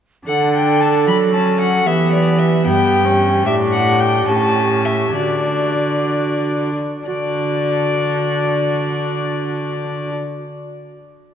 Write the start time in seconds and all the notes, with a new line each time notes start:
0.27 D3 D4 A4 F#5
0.55 G5
0.81 A5
1.07 F#3 B5
1.34 C#4 A5
1.61 F#5
1.86 E3 B3 G4 E5
2.13 D5
2.39 E5
2.66 G2 B3 G4 G5
3.05 C#4
3.46 A2 D4 G4 E5
3.72 F#5
4.00 G5
4.28 A2 C#4 G4 A5
4.86 E5
5.15 D3 D4 F#4 D5
7.07 D3 D4 F#4 D5